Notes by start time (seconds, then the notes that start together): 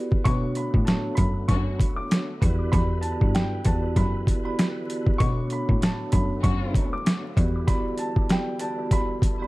Already playing: B3 E4 F#4 G4 B4 D5
0.12 kick
0.24 B2 D3 A3 B3 D4 F#4 A4 C#5 C#6, kick, closed hi-hat
0.55 B5, closed hi-hat
0.74 A2, kick
0.85 A5, snare, closed hi-hat
1.15 F#2 B5, kick, closed hi-hat
1.48 F#2 D3 C#4 F#4 C#6, kick, closed hi-hat
1.80 kick, closed hi-hat
1.96 D6
2.11 snare, closed hi-hat
2.41 E2 D3 E3 B3 E4 F#4 G4 B4 D5, kick, closed hi-hat
2.72 E2 B3 E4 F#4 G4 D5 B5, kick, closed hi-hat
3.01 A5, closed hi-hat
3.21 G2, kick
3.35 G5, snare, closed hi-hat
3.64 E2 B3 E4 F#4 G4 D5 A5, kick, closed hi-hat
3.96 F#2 B5, kick, closed hi-hat
4.27 kick, closed hi-hat
4.43 B3 E4 F#4 G4 D5 B5
4.59 snare, closed hi-hat
4.90 closed hi-hat
5.07 kick
5.18 B2 A3 B3 D4 F#4 A4 C#5 C#6, kick, closed hi-hat
5.50 B5, closed hi-hat
5.69 A2, kick
5.82 A5, snare, closed hi-hat
6.12 F#2 B5, kick, closed hi-hat
6.42 F#2 D3 C#4 F#4 C#6, kick, closed hi-hat
6.75 kick, closed hi-hat
6.93 D6
7.06 snare, closed hi-hat
7.36 E2 E3 G3 B3 E4 F#4 G4 D5, kick, closed hi-hat
7.67 B3 E4 F#4 G4 D5 B5, kick, closed hi-hat
7.98 A5, closed hi-hat
8.16 kick
8.29 G5, snare, closed hi-hat
8.59 B3 E4 F#4 G4 D5 A5, closed hi-hat
8.91 B5, kick, closed hi-hat
9.22 kick, closed hi-hat
9.38 B3 E4 F#4 G4 D5
9.42 B5